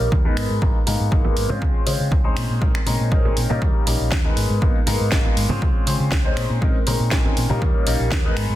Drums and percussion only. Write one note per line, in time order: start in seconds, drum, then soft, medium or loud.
0.12 kick loud
0.12 tambourine medium
0.12 high conga medium
0.37 finger snap medium
0.37 open hi-hat medium
0.50 tambourine soft
0.62 kick loud
0.75 tambourine soft
0.87 open hi-hat loud
0.87 tambourine medium
0.87 high conga medium
1.00 tambourine soft
1.12 kick loud
1.24 tambourine soft
1.24 low conga medium
1.37 open hi-hat medium
1.37 tambourine medium
1.50 tambourine soft
1.50 high conga loud
1.50 low conga medium
1.61 kick loud
1.61 tambourine medium
1.74 tambourine soft
1.87 open hi-hat loud
2.00 tambourine soft
2.11 kick loud
2.11 tambourine soft
2.11 high conga medium
2.36 finger snap medium
2.36 open hi-hat medium
2.36 tambourine medium
2.50 tambourine soft
2.62 kick loud
2.62 tambourine medium
2.75 finger snap medium
2.86 open hi-hat loud
2.86 tambourine medium
2.86 high conga medium
3.00 tambourine soft
3.12 kick loud
3.25 tambourine soft
3.25 low conga medium
3.37 open hi-hat medium
3.37 tambourine medium
3.50 tambourine soft
3.50 high conga medium
3.50 low conga medium
3.62 kick loud
3.62 tambourine medium
3.87 open hi-hat loud
3.87 tambourine medium
4.00 tambourine soft
4.11 kick loud
4.11 snare loud
4.11 tambourine medium
4.11 high conga medium
4.37 open hi-hat medium
4.37 tambourine medium
4.50 tambourine soft
4.61 kick loud
4.61 tambourine soft
4.75 tambourine soft
4.86 open hi-hat loud
4.86 tambourine medium
4.86 high conga medium
5.00 tambourine soft
5.12 kick loud
5.12 snare loud
5.24 tambourine soft
5.24 low conga medium
5.36 open hi-hat medium
5.36 tambourine medium
5.49 tambourine soft
5.49 high conga loud
5.49 low conga medium
5.61 kick loud
5.61 tambourine medium
5.86 open hi-hat loud
5.86 tambourine medium
6.00 tambourine soft
6.11 kick loud
6.11 snare loud
6.11 tambourine soft
6.11 high conga medium
6.37 finger snap medium
6.37 open hi-hat medium
6.37 tambourine medium
6.50 tambourine soft
6.61 kick loud
6.61 tambourine soft
6.74 tambourine soft
6.87 open hi-hat loud
6.87 tambourine medium
6.87 high conga medium
7.00 tambourine soft
7.11 kick loud
7.11 snare loud
7.25 tambourine soft
7.25 low conga medium
7.37 open hi-hat medium
7.37 tambourine medium
7.49 tambourine soft
7.49 high conga medium
7.49 low conga medium
7.62 kick loud
7.62 tambourine medium
7.87 open hi-hat loud
7.87 tambourine loud
8.00 tambourine soft
8.11 kick loud
8.11 snare loud
8.11 tambourine soft
8.11 high conga medium
8.36 finger snap medium
8.36 open hi-hat medium
8.36 tambourine loud
8.50 tambourine soft